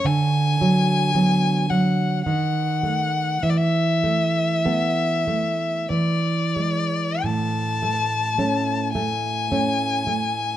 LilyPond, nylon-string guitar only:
\new Staff \with { instrumentName = "Nylon-string guitar" } { \time 3/4 \key a \major \tempo 4 = 53 d8 fis8 <fis b>8 fis8 dis8 a8 | e8 a8 <a b>8 a8 e8 gis8 | a,8 a8 <a cis'>8 a8 <a cis'>8 a8 | }